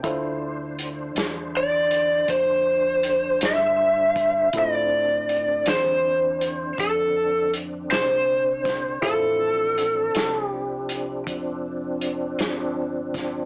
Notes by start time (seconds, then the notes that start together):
0.03 D2 D3 D4 E4 F4 A4 C5, kick, closed hi-hat
0.79 closed hi-hat
1.15 E2, snare, closed hi-hat
1.57 D5
1.91 closed hi-hat
2.28 F2 C5, kick, closed hi-hat
3.03 closed hi-hat
3.41 G2, snare, closed hi-hat
3.46 E5
4.16 kick, closed hi-hat
4.53 A2 D3 C4 D4 E4 F4 A4 C5, kick, closed hi-hat
4.58 D5
5.29 closed hi-hat
5.66 E2 C5, snare, closed hi-hat
6.41 closed hi-hat
6.78 F2 A4, kick, closed hi-hat
7.54 closed hi-hat
7.90 C2 C5, snare, closed hi-hat
8.65 kick, snare, closed hi-hat
9.02 A1 F3 C4 E4 F4 A4 C5, kick, closed hi-hat
9.06 D4
9.78 closed hi-hat
10.15 C2, snare, closed hi-hat
10.45 G4
10.89 closed hi-hat
11.27 F1, kick, closed hi-hat
12.01 closed hi-hat
12.38 G1, snare, closed hi-hat
13.14 kick, snare, closed hi-hat